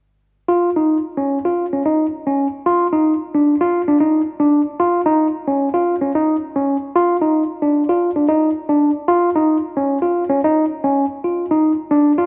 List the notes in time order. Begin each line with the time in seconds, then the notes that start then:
0.48 F4
0.76 D#4
1.17 C#4
1.45 F4
1.73 C#4
1.86 D#4
2.27 C#4
2.66 F4
2.93 D#4
3.35 D4
3.61 F4
3.88 D4
4.00 D#4
4.40 D4
4.80 F4
5.06 D#4
5.48 C#4
5.74 F4
6.01 C#4
6.15 D#4
6.56 C#4
6.96 F4
7.22 D#4
7.62 D4
7.89 F4
8.16 D4
8.29 D#4
8.69 D4
9.08 F4
9.36 D#4
9.77 C#4
10.02 F4
10.29 C#4
10.44 D#4
10.84 C#4
11.24 F4
11.51 D#4
11.91 D4
12.18 F4